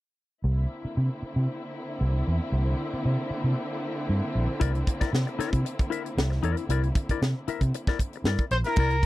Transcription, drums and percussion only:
0, 0, Header, 1, 2, 480
1, 0, Start_track
1, 0, Tempo, 519931
1, 413, Time_signature, 4, 2, 24, 8
1, 8363, End_track
2, 0, Start_track
2, 0, Title_t, "Drums"
2, 4257, Note_on_c, 9, 36, 97
2, 4258, Note_on_c, 9, 42, 97
2, 4349, Note_off_c, 9, 36, 0
2, 4351, Note_off_c, 9, 42, 0
2, 4384, Note_on_c, 9, 42, 34
2, 4476, Note_off_c, 9, 42, 0
2, 4498, Note_on_c, 9, 36, 89
2, 4506, Note_on_c, 9, 42, 75
2, 4591, Note_off_c, 9, 36, 0
2, 4598, Note_off_c, 9, 42, 0
2, 4624, Note_on_c, 9, 42, 51
2, 4627, Note_on_c, 9, 36, 79
2, 4633, Note_on_c, 9, 38, 27
2, 4716, Note_off_c, 9, 42, 0
2, 4719, Note_off_c, 9, 36, 0
2, 4725, Note_off_c, 9, 38, 0
2, 4750, Note_on_c, 9, 38, 86
2, 4842, Note_off_c, 9, 38, 0
2, 4867, Note_on_c, 9, 42, 28
2, 4960, Note_off_c, 9, 42, 0
2, 4986, Note_on_c, 9, 42, 69
2, 4996, Note_on_c, 9, 38, 29
2, 5079, Note_off_c, 9, 42, 0
2, 5089, Note_off_c, 9, 38, 0
2, 5104, Note_on_c, 9, 36, 80
2, 5112, Note_on_c, 9, 42, 48
2, 5196, Note_off_c, 9, 36, 0
2, 5204, Note_off_c, 9, 42, 0
2, 5224, Note_on_c, 9, 42, 87
2, 5316, Note_off_c, 9, 42, 0
2, 5349, Note_on_c, 9, 36, 80
2, 5357, Note_on_c, 9, 42, 35
2, 5441, Note_off_c, 9, 36, 0
2, 5449, Note_off_c, 9, 42, 0
2, 5465, Note_on_c, 9, 42, 66
2, 5557, Note_off_c, 9, 42, 0
2, 5593, Note_on_c, 9, 42, 46
2, 5685, Note_off_c, 9, 42, 0
2, 5710, Note_on_c, 9, 38, 115
2, 5802, Note_off_c, 9, 38, 0
2, 5835, Note_on_c, 9, 38, 35
2, 5927, Note_off_c, 9, 38, 0
2, 5938, Note_on_c, 9, 42, 61
2, 6030, Note_off_c, 9, 42, 0
2, 6065, Note_on_c, 9, 42, 51
2, 6157, Note_off_c, 9, 42, 0
2, 6181, Note_on_c, 9, 42, 95
2, 6274, Note_off_c, 9, 42, 0
2, 6309, Note_on_c, 9, 42, 30
2, 6401, Note_off_c, 9, 42, 0
2, 6419, Note_on_c, 9, 36, 89
2, 6422, Note_on_c, 9, 42, 71
2, 6512, Note_off_c, 9, 36, 0
2, 6514, Note_off_c, 9, 42, 0
2, 6549, Note_on_c, 9, 36, 71
2, 6549, Note_on_c, 9, 42, 46
2, 6641, Note_off_c, 9, 36, 0
2, 6641, Note_off_c, 9, 42, 0
2, 6670, Note_on_c, 9, 38, 95
2, 6763, Note_off_c, 9, 38, 0
2, 6903, Note_on_c, 9, 42, 70
2, 6996, Note_off_c, 9, 42, 0
2, 7026, Note_on_c, 9, 36, 75
2, 7033, Note_on_c, 9, 42, 47
2, 7118, Note_off_c, 9, 36, 0
2, 7126, Note_off_c, 9, 42, 0
2, 7147, Note_on_c, 9, 42, 94
2, 7239, Note_off_c, 9, 42, 0
2, 7269, Note_on_c, 9, 36, 90
2, 7273, Note_on_c, 9, 38, 40
2, 7361, Note_off_c, 9, 36, 0
2, 7366, Note_off_c, 9, 38, 0
2, 7380, Note_on_c, 9, 36, 73
2, 7385, Note_on_c, 9, 42, 69
2, 7472, Note_off_c, 9, 36, 0
2, 7478, Note_off_c, 9, 42, 0
2, 7505, Note_on_c, 9, 42, 42
2, 7597, Note_off_c, 9, 42, 0
2, 7619, Note_on_c, 9, 38, 110
2, 7712, Note_off_c, 9, 38, 0
2, 7735, Note_on_c, 9, 42, 31
2, 7744, Note_on_c, 9, 36, 90
2, 7827, Note_off_c, 9, 42, 0
2, 7836, Note_off_c, 9, 36, 0
2, 7853, Note_on_c, 9, 42, 60
2, 7946, Note_off_c, 9, 42, 0
2, 7977, Note_on_c, 9, 42, 46
2, 7982, Note_on_c, 9, 38, 33
2, 8070, Note_off_c, 9, 42, 0
2, 8075, Note_off_c, 9, 38, 0
2, 8087, Note_on_c, 9, 49, 93
2, 8096, Note_on_c, 9, 36, 127
2, 8179, Note_off_c, 9, 49, 0
2, 8188, Note_off_c, 9, 36, 0
2, 8219, Note_on_c, 9, 42, 37
2, 8311, Note_off_c, 9, 42, 0
2, 8363, End_track
0, 0, End_of_file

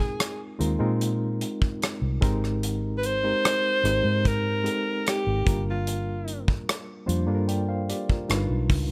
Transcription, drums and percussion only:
0, 0, Header, 1, 2, 480
1, 0, Start_track
1, 0, Tempo, 809717
1, 1557, Time_signature, 4, 2, 24, 8
1, 5285, End_track
2, 0, Start_track
2, 0, Title_t, "Drums"
2, 119, Note_on_c, 9, 42, 92
2, 120, Note_on_c, 9, 37, 102
2, 178, Note_off_c, 9, 42, 0
2, 179, Note_off_c, 9, 37, 0
2, 360, Note_on_c, 9, 42, 59
2, 419, Note_off_c, 9, 42, 0
2, 600, Note_on_c, 9, 42, 68
2, 659, Note_off_c, 9, 42, 0
2, 838, Note_on_c, 9, 42, 74
2, 897, Note_off_c, 9, 42, 0
2, 958, Note_on_c, 9, 36, 76
2, 1018, Note_off_c, 9, 36, 0
2, 1081, Note_on_c, 9, 42, 72
2, 1088, Note_on_c, 9, 37, 89
2, 1140, Note_off_c, 9, 42, 0
2, 1147, Note_off_c, 9, 37, 0
2, 1318, Note_on_c, 9, 36, 93
2, 1325, Note_on_c, 9, 42, 71
2, 1377, Note_off_c, 9, 36, 0
2, 1384, Note_off_c, 9, 42, 0
2, 1446, Note_on_c, 9, 37, 31
2, 1505, Note_off_c, 9, 37, 0
2, 1561, Note_on_c, 9, 42, 86
2, 1620, Note_off_c, 9, 42, 0
2, 1798, Note_on_c, 9, 42, 58
2, 1857, Note_off_c, 9, 42, 0
2, 2046, Note_on_c, 9, 42, 90
2, 2047, Note_on_c, 9, 37, 102
2, 2105, Note_off_c, 9, 42, 0
2, 2106, Note_off_c, 9, 37, 0
2, 2282, Note_on_c, 9, 42, 57
2, 2285, Note_on_c, 9, 37, 30
2, 2342, Note_off_c, 9, 42, 0
2, 2345, Note_off_c, 9, 37, 0
2, 2521, Note_on_c, 9, 36, 70
2, 2524, Note_on_c, 9, 42, 63
2, 2581, Note_off_c, 9, 36, 0
2, 2583, Note_off_c, 9, 42, 0
2, 2763, Note_on_c, 9, 42, 70
2, 2822, Note_off_c, 9, 42, 0
2, 3003, Note_on_c, 9, 42, 64
2, 3010, Note_on_c, 9, 37, 85
2, 3062, Note_off_c, 9, 42, 0
2, 3069, Note_off_c, 9, 37, 0
2, 3240, Note_on_c, 9, 36, 93
2, 3246, Note_on_c, 9, 42, 68
2, 3300, Note_off_c, 9, 36, 0
2, 3305, Note_off_c, 9, 42, 0
2, 3481, Note_on_c, 9, 42, 85
2, 3540, Note_off_c, 9, 42, 0
2, 3721, Note_on_c, 9, 42, 58
2, 3781, Note_off_c, 9, 42, 0
2, 3842, Note_on_c, 9, 36, 78
2, 3901, Note_off_c, 9, 36, 0
2, 3967, Note_on_c, 9, 42, 94
2, 3968, Note_on_c, 9, 37, 99
2, 4026, Note_off_c, 9, 42, 0
2, 4027, Note_off_c, 9, 37, 0
2, 4203, Note_on_c, 9, 42, 63
2, 4263, Note_off_c, 9, 42, 0
2, 4439, Note_on_c, 9, 42, 64
2, 4498, Note_off_c, 9, 42, 0
2, 4681, Note_on_c, 9, 42, 77
2, 4740, Note_off_c, 9, 42, 0
2, 4799, Note_on_c, 9, 36, 76
2, 4858, Note_off_c, 9, 36, 0
2, 4918, Note_on_c, 9, 42, 72
2, 4925, Note_on_c, 9, 37, 83
2, 4978, Note_off_c, 9, 42, 0
2, 4984, Note_off_c, 9, 37, 0
2, 5156, Note_on_c, 9, 36, 94
2, 5161, Note_on_c, 9, 46, 69
2, 5215, Note_off_c, 9, 36, 0
2, 5220, Note_off_c, 9, 46, 0
2, 5285, End_track
0, 0, End_of_file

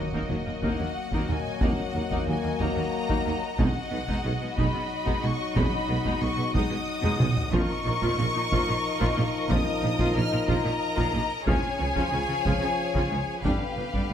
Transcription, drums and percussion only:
0, 0, Header, 1, 2, 480
1, 0, Start_track
1, 0, Key_signature, -6, "minor"
1, 0, Tempo, 656455
1, 1183, Time_signature, 6, 3, 24, 8
1, 10335, End_track
2, 0, Start_track
2, 0, Title_t, "Taiko and cinematic ensemble drums"
2, 98, Note_on_c, 9, 41, 65
2, 171, Note_off_c, 9, 41, 0
2, 217, Note_on_c, 9, 47, 52
2, 290, Note_off_c, 9, 47, 0
2, 456, Note_on_c, 9, 41, 74
2, 529, Note_off_c, 9, 41, 0
2, 815, Note_on_c, 9, 41, 70
2, 888, Note_off_c, 9, 41, 0
2, 938, Note_on_c, 9, 47, 52
2, 1012, Note_off_c, 9, 47, 0
2, 1178, Note_on_c, 9, 41, 92
2, 1251, Note_off_c, 9, 41, 0
2, 1542, Note_on_c, 9, 41, 68
2, 1616, Note_off_c, 9, 41, 0
2, 1900, Note_on_c, 9, 41, 70
2, 1973, Note_off_c, 9, 41, 0
2, 2264, Note_on_c, 9, 41, 67
2, 2337, Note_off_c, 9, 41, 0
2, 2624, Note_on_c, 9, 41, 90
2, 2697, Note_off_c, 9, 41, 0
2, 2985, Note_on_c, 9, 41, 67
2, 3058, Note_off_c, 9, 41, 0
2, 3347, Note_on_c, 9, 41, 71
2, 3420, Note_off_c, 9, 41, 0
2, 3707, Note_on_c, 9, 41, 68
2, 3780, Note_off_c, 9, 41, 0
2, 4068, Note_on_c, 9, 41, 92
2, 4141, Note_off_c, 9, 41, 0
2, 4425, Note_on_c, 9, 41, 67
2, 4498, Note_off_c, 9, 41, 0
2, 4788, Note_on_c, 9, 41, 77
2, 4861, Note_off_c, 9, 41, 0
2, 5149, Note_on_c, 9, 45, 76
2, 5222, Note_off_c, 9, 45, 0
2, 5265, Note_on_c, 9, 47, 87
2, 5338, Note_off_c, 9, 47, 0
2, 5387, Note_on_c, 9, 43, 82
2, 5460, Note_off_c, 9, 43, 0
2, 5507, Note_on_c, 9, 41, 92
2, 5580, Note_off_c, 9, 41, 0
2, 5868, Note_on_c, 9, 41, 72
2, 5941, Note_off_c, 9, 41, 0
2, 6230, Note_on_c, 9, 41, 71
2, 6303, Note_off_c, 9, 41, 0
2, 6586, Note_on_c, 9, 41, 78
2, 6659, Note_off_c, 9, 41, 0
2, 6948, Note_on_c, 9, 41, 97
2, 7021, Note_off_c, 9, 41, 0
2, 7306, Note_on_c, 9, 41, 75
2, 7379, Note_off_c, 9, 41, 0
2, 7666, Note_on_c, 9, 41, 75
2, 7739, Note_off_c, 9, 41, 0
2, 8026, Note_on_c, 9, 41, 71
2, 8099, Note_off_c, 9, 41, 0
2, 8387, Note_on_c, 9, 41, 88
2, 8460, Note_off_c, 9, 41, 0
2, 8747, Note_on_c, 9, 41, 73
2, 8820, Note_off_c, 9, 41, 0
2, 9107, Note_on_c, 9, 41, 74
2, 9180, Note_off_c, 9, 41, 0
2, 9468, Note_on_c, 9, 41, 69
2, 9541, Note_off_c, 9, 41, 0
2, 9830, Note_on_c, 9, 41, 86
2, 9903, Note_off_c, 9, 41, 0
2, 10191, Note_on_c, 9, 41, 65
2, 10264, Note_off_c, 9, 41, 0
2, 10335, End_track
0, 0, End_of_file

